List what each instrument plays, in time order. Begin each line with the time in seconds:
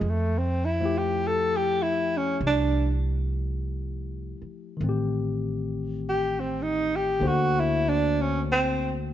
Already playing: tenor saxophone G#3
0.01 upright bass F2
0.09 tenor saxophone A3
0.38 tenor saxophone C4
0.65 tenor saxophone E4
0.80 tine electric piano F3 A3 E4
0.85 tine electric piano G4
0.98 tenor saxophone G4
1.27 tenor saxophone A4
1.57 tenor saxophone G4
1.83 tenor saxophone E4
2.17 tenor saxophone C#4
2.41 upright bass C2
2.47 tenor saxophone D4
4.42 muted upright bass stroke
4.77 upright bass A1, tine electric piano D#3 A3
4.84 tine electric piano C4
4.89 tine electric piano G4
6.09 tenor saxophone G4
6.40 tenor saxophone C4
6.62 tenor saxophone D#4
6.96 tenor saxophone G4
7.20 upright bass D2, tine electric piano D3 A#3 C5
7.24 tine electric piano F#4, tenor saxophone F#4
7.60 tenor saxophone E4
7.89 tenor saxophone D4
8.21 tenor saxophone C#4
8.52 tenor saxophone C4